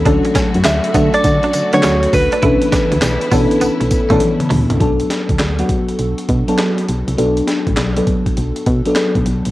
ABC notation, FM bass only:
X:1
M:4/4
L:1/16
Q:"Swing 16ths" 1/4=101
K:Bm
V:1 name="FM bass" clef=bass
D,, z2 F,, D,, z D, z D, z D, D, D,,2 D,, z | B,,, z2 D,, B,,, z B,, z B,,, B,,, z B,,, z2 D,, =C,, | B,,,2 z D,, D,,2 z2 B,,, z B,, z3 B,,, =C,, | B,,,2 z A,,, B,,,2 z2 B,,, z B,, z2 B,,, B,,, ^A,,, |]